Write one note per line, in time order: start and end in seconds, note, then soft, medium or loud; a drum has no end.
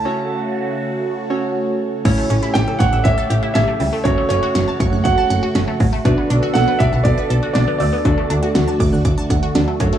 0.00 2.01 C#3 medium
0.00 2.01 A3 medium
0.00 1.50 A5 loud
0.05 1.28 C#4 medium
0.05 2.03 F#4 loud
0.05 1.28 F#4 medium
0.05 1.28 A4 medium
0.05 1.28 C#5 medium
1.30 2.04 C#4 medium
1.30 2.05 F#4 medium
1.30 2.04 A4 medium
1.30 2.04 C#5 medium
2.05 2.15 A1 loud
2.05 6.01 C#3 medium
2.05 2.15 G3 medium
2.05 6.01 A3 medium
2.05 4.01 C#4 medium
2.05 4.01 E4 medium
2.05 4.03 G4 medium
2.05 4.01 A4 medium
2.05 4.01 C#5 medium
2.05 kick loud
2.05 closed hi-hat medium
2.05 crash loud
2.18 2.28 A3 medium
2.30 2.40 A1 loud
2.30 2.40 C#4 medium
2.30 closed hi-hat medium
2.43 2.53 E4 loud
2.54 2.65 A1 loud
2.54 2.65 G4 medium
2.54 2.78 G5 loud
2.54 snare loud
2.54 closed hi-hat medium
2.68 2.78 A4 medium
2.79 2.90 A1 loud
2.79 2.90 C#5 loud
2.79 3.05 F#5 loud
2.79 kick loud
2.79 closed hi-hat medium
2.93 3.03 A1 loud
2.93 3.03 E5 medium
3.04 3.15 A1 loud
3.04 3.15 C#5 medium
3.04 3.52 E5 loud
3.04 kick loud
3.04 closed hi-hat medium
3.18 3.28 A4 loud
3.30 3.40 A1 loud
3.30 3.40 G4 medium
3.30 closed hi-hat medium
3.43 3.53 E4 medium
3.54 3.65 A1 loud
3.54 3.65 C#4 medium
3.54 4.06 E5 loud
3.54 snare loud
3.54 closed hi-hat medium
3.68 3.78 A3 medium
3.80 3.90 C#2 medium
3.80 3.90 G3 medium
3.80 open hi-hat medium
3.93 4.03 A3 loud
4.04 4.15 F#1 loud
4.04 4.15 F#3 medium
4.04 6.01 C#4 medium
4.04 6.03 F#4 loud
4.04 6.01 F#4 medium
4.04 6.01 A4 medium
4.04 4.27 C#5 loud
4.04 6.01 C#5 medium
4.04 kick loud
4.04 closed hi-hat medium
4.18 4.28 A3 medium
4.29 4.40 F#1 loud
4.29 4.40 C#4 medium
4.29 5.07 C#5 loud
4.29 closed hi-hat medium
4.43 4.53 F#4 loud
4.55 4.65 F#1 loud
4.55 4.65 F#5 medium
4.55 snare loud
4.55 closed hi-hat loud
4.68 4.78 A5 medium
4.80 4.90 F#1 loud
4.80 4.90 C#6 loud
4.80 kick loud
4.80 closed hi-hat medium
4.93 5.03 F#1 loud
4.93 5.03 F#6 medium
5.04 5.15 F#1 loud
5.04 5.75 F#5 medium
5.04 5.15 C#6 medium
5.04 kick loud
5.04 closed hi-hat medium
5.18 5.28 A5 loud
5.30 5.40 F#1 loud
5.30 5.40 F#5 medium
5.30 closed hi-hat medium
5.43 5.53 F#4 medium
5.55 5.65 F#1 medium
5.55 5.65 C#4 medium
5.55 snare loud
5.55 closed hi-hat medium
5.68 5.78 A3 medium
5.80 5.90 A1 medium
5.80 5.90 F#3 medium
5.80 kick loud
5.80 open hi-hat medium
5.93 6.03 A3 medium
6.05 6.15 B1 loud
6.05 9.98 D3 medium
6.05 6.15 A3 medium
6.05 8.03 B3 medium
6.05 8.01 D4 medium
6.05 8.01 F#4 medium
6.05 8.03 A4 medium
6.05 8.01 B4 medium
6.05 8.01 D5 medium
6.05 kick loud
6.05 closed hi-hat medium
6.18 6.28 B3 medium
6.30 6.40 B1 loud
6.30 6.40 D4 medium
6.30 closed hi-hat medium
6.43 6.53 F#4 loud
6.54 6.65 B1 loud
6.54 6.65 A4 medium
6.54 6.80 F#5 loud
6.54 snare loud
6.54 closed hi-hat medium
6.68 6.78 B4 medium
6.79 6.90 B1 loud
6.79 6.90 D5 loud
6.79 7.05 E5 loud
6.79 kick loud
6.79 closed hi-hat medium
6.93 7.03 B1 medium
6.93 7.03 F#5 medium
7.04 7.15 B1 loud
7.04 7.51 D5 medium
7.04 7.15 D5 medium
7.04 kick loud
7.04 closed hi-hat medium
7.18 7.28 B4 loud
7.30 7.40 B1 loud
7.30 7.40 A4 medium
7.30 closed hi-hat medium
7.43 7.53 F#4 medium
7.54 7.65 B1 loud
7.54 7.65 D4 loud
7.54 7.77 D5 medium
7.54 snare loud
7.54 closed hi-hat medium
7.68 7.78 B3 medium
7.78 7.90 D2 loud
7.78 7.90 A3 medium
7.78 8.75 D5 medium
7.78 open hi-hat medium
7.93 8.03 B3 loud
8.05 8.15 D2 loud
8.05 8.15 F#3 medium
8.05 9.98 A3 medium
8.05 9.77 D4 medium
8.05 9.98 F#4 medium
8.05 9.77 F#4 medium
8.05 9.77 A4 medium
8.05 9.77 D5 medium
8.05 kick loud
8.05 closed hi-hat medium
8.18 8.28 A3 medium
8.30 8.40 D2 loud
8.30 8.40 D4 medium
8.30 closed hi-hat medium
8.43 8.53 F#4 loud
8.55 8.65 D2 loud
8.55 8.65 F#5 medium
8.55 snare loud
8.55 closed hi-hat medium
8.68 8.78 A5 medium
8.80 8.90 D2 loud
8.80 8.90 D6 loud
8.80 kick loud
8.80 open hi-hat medium
8.93 9.03 D2 loud
8.93 9.03 F#6 medium
9.05 9.15 D2 loud
9.05 9.15 D6 medium
9.05 kick loud
9.05 closed hi-hat medium
9.18 9.28 A5 loud
9.30 9.40 D2 loud
9.30 9.40 F#5 medium
9.30 kick medium
9.30 closed hi-hat medium
9.43 9.53 F#4 medium
9.55 9.65 D2 loud
9.55 9.65 D4 loud
9.55 snare loud
9.55 closed hi-hat medium
9.68 9.78 A3 medium
9.80 9.90 F#2 medium
9.80 9.90 F#3 medium
9.80 9.98 D4 medium
9.80 9.98 F#4 medium
9.80 9.98 A4 medium
9.80 9.98 C#5 medium
9.80 kick loud
9.80 closed hi-hat medium
9.93 9.98 A3 loud